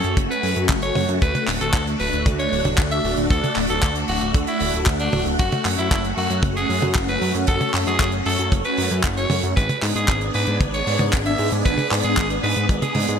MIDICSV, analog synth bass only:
0, 0, Header, 1, 2, 480
1, 0, Start_track
1, 0, Key_signature, 3, "minor"
1, 0, Tempo, 521739
1, 1119, Time_signature, 4, 2, 24, 8
1, 12138, End_track
2, 0, Start_track
2, 0, Title_t, "Analog synth bass"
2, 0, Program_c, 0, 38
2, 39, Note_on_c, 0, 42, 93
2, 141, Note_off_c, 0, 42, 0
2, 156, Note_on_c, 0, 30, 91
2, 260, Note_off_c, 0, 30, 0
2, 398, Note_on_c, 0, 42, 92
2, 501, Note_off_c, 0, 42, 0
2, 519, Note_on_c, 0, 42, 95
2, 621, Note_off_c, 0, 42, 0
2, 637, Note_on_c, 0, 30, 102
2, 843, Note_off_c, 0, 30, 0
2, 879, Note_on_c, 0, 42, 85
2, 981, Note_off_c, 0, 42, 0
2, 999, Note_on_c, 0, 42, 103
2, 1101, Note_off_c, 0, 42, 0
2, 1122, Note_on_c, 0, 38, 98
2, 1223, Note_off_c, 0, 38, 0
2, 1359, Note_on_c, 0, 26, 104
2, 1461, Note_off_c, 0, 26, 0
2, 1480, Note_on_c, 0, 26, 83
2, 1582, Note_off_c, 0, 26, 0
2, 1595, Note_on_c, 0, 38, 85
2, 1802, Note_off_c, 0, 38, 0
2, 1839, Note_on_c, 0, 26, 85
2, 1941, Note_off_c, 0, 26, 0
2, 1960, Note_on_c, 0, 26, 91
2, 2062, Note_off_c, 0, 26, 0
2, 2080, Note_on_c, 0, 38, 91
2, 2284, Note_off_c, 0, 38, 0
2, 2319, Note_on_c, 0, 26, 83
2, 2421, Note_off_c, 0, 26, 0
2, 2439, Note_on_c, 0, 26, 97
2, 2541, Note_off_c, 0, 26, 0
2, 2559, Note_on_c, 0, 38, 80
2, 2764, Note_off_c, 0, 38, 0
2, 2799, Note_on_c, 0, 26, 102
2, 2901, Note_off_c, 0, 26, 0
2, 2919, Note_on_c, 0, 26, 103
2, 3021, Note_off_c, 0, 26, 0
2, 3041, Note_on_c, 0, 38, 99
2, 3142, Note_off_c, 0, 38, 0
2, 3279, Note_on_c, 0, 26, 100
2, 3381, Note_off_c, 0, 26, 0
2, 3399, Note_on_c, 0, 26, 82
2, 3501, Note_off_c, 0, 26, 0
2, 3521, Note_on_c, 0, 38, 86
2, 3725, Note_off_c, 0, 38, 0
2, 3759, Note_on_c, 0, 26, 84
2, 3861, Note_off_c, 0, 26, 0
2, 3879, Note_on_c, 0, 26, 90
2, 3981, Note_off_c, 0, 26, 0
2, 3998, Note_on_c, 0, 38, 89
2, 4101, Note_off_c, 0, 38, 0
2, 4239, Note_on_c, 0, 26, 105
2, 4341, Note_off_c, 0, 26, 0
2, 4360, Note_on_c, 0, 26, 103
2, 4462, Note_off_c, 0, 26, 0
2, 4477, Note_on_c, 0, 38, 98
2, 4682, Note_off_c, 0, 38, 0
2, 4719, Note_on_c, 0, 26, 100
2, 4821, Note_off_c, 0, 26, 0
2, 4839, Note_on_c, 0, 26, 103
2, 4941, Note_off_c, 0, 26, 0
2, 4963, Note_on_c, 0, 30, 104
2, 5064, Note_off_c, 0, 30, 0
2, 5199, Note_on_c, 0, 42, 106
2, 5301, Note_off_c, 0, 42, 0
2, 5319, Note_on_c, 0, 42, 82
2, 5421, Note_off_c, 0, 42, 0
2, 5439, Note_on_c, 0, 30, 84
2, 5644, Note_off_c, 0, 30, 0
2, 5678, Note_on_c, 0, 42, 87
2, 5781, Note_off_c, 0, 42, 0
2, 5798, Note_on_c, 0, 42, 92
2, 5901, Note_off_c, 0, 42, 0
2, 5913, Note_on_c, 0, 30, 90
2, 6121, Note_off_c, 0, 30, 0
2, 6159, Note_on_c, 0, 42, 83
2, 6261, Note_off_c, 0, 42, 0
2, 6279, Note_on_c, 0, 42, 97
2, 6381, Note_off_c, 0, 42, 0
2, 6398, Note_on_c, 0, 30, 82
2, 6603, Note_off_c, 0, 30, 0
2, 6639, Note_on_c, 0, 42, 102
2, 6741, Note_off_c, 0, 42, 0
2, 6759, Note_on_c, 0, 42, 100
2, 6861, Note_off_c, 0, 42, 0
2, 6882, Note_on_c, 0, 30, 100
2, 6983, Note_off_c, 0, 30, 0
2, 7119, Note_on_c, 0, 42, 105
2, 7222, Note_off_c, 0, 42, 0
2, 7240, Note_on_c, 0, 42, 83
2, 7342, Note_off_c, 0, 42, 0
2, 7356, Note_on_c, 0, 30, 86
2, 7562, Note_off_c, 0, 30, 0
2, 7600, Note_on_c, 0, 42, 85
2, 7702, Note_off_c, 0, 42, 0
2, 7719, Note_on_c, 0, 42, 91
2, 7822, Note_off_c, 0, 42, 0
2, 7838, Note_on_c, 0, 30, 88
2, 7941, Note_off_c, 0, 30, 0
2, 8078, Note_on_c, 0, 42, 92
2, 8181, Note_off_c, 0, 42, 0
2, 8199, Note_on_c, 0, 42, 98
2, 8301, Note_off_c, 0, 42, 0
2, 8316, Note_on_c, 0, 30, 101
2, 8522, Note_off_c, 0, 30, 0
2, 8558, Note_on_c, 0, 42, 88
2, 8661, Note_off_c, 0, 42, 0
2, 8679, Note_on_c, 0, 42, 103
2, 8781, Note_off_c, 0, 42, 0
2, 8805, Note_on_c, 0, 32, 99
2, 8904, Note_off_c, 0, 32, 0
2, 9038, Note_on_c, 0, 44, 101
2, 9141, Note_off_c, 0, 44, 0
2, 9158, Note_on_c, 0, 44, 86
2, 9261, Note_off_c, 0, 44, 0
2, 9276, Note_on_c, 0, 32, 86
2, 9482, Note_off_c, 0, 32, 0
2, 9519, Note_on_c, 0, 44, 86
2, 9621, Note_off_c, 0, 44, 0
2, 9638, Note_on_c, 0, 44, 91
2, 9741, Note_off_c, 0, 44, 0
2, 9757, Note_on_c, 0, 32, 91
2, 9963, Note_off_c, 0, 32, 0
2, 9999, Note_on_c, 0, 44, 80
2, 10102, Note_off_c, 0, 44, 0
2, 10119, Note_on_c, 0, 44, 101
2, 10221, Note_off_c, 0, 44, 0
2, 10244, Note_on_c, 0, 32, 81
2, 10446, Note_off_c, 0, 32, 0
2, 10479, Note_on_c, 0, 44, 101
2, 10582, Note_off_c, 0, 44, 0
2, 10599, Note_on_c, 0, 44, 102
2, 10702, Note_off_c, 0, 44, 0
2, 10724, Note_on_c, 0, 32, 102
2, 10824, Note_off_c, 0, 32, 0
2, 10960, Note_on_c, 0, 44, 102
2, 11062, Note_off_c, 0, 44, 0
2, 11080, Note_on_c, 0, 44, 83
2, 11182, Note_off_c, 0, 44, 0
2, 11200, Note_on_c, 0, 32, 89
2, 11404, Note_off_c, 0, 32, 0
2, 11440, Note_on_c, 0, 44, 87
2, 11542, Note_off_c, 0, 44, 0
2, 11560, Note_on_c, 0, 44, 90
2, 11662, Note_off_c, 0, 44, 0
2, 11677, Note_on_c, 0, 32, 92
2, 11781, Note_off_c, 0, 32, 0
2, 11920, Note_on_c, 0, 44, 91
2, 12022, Note_off_c, 0, 44, 0
2, 12040, Note_on_c, 0, 44, 93
2, 12138, Note_off_c, 0, 44, 0
2, 12138, End_track
0, 0, End_of_file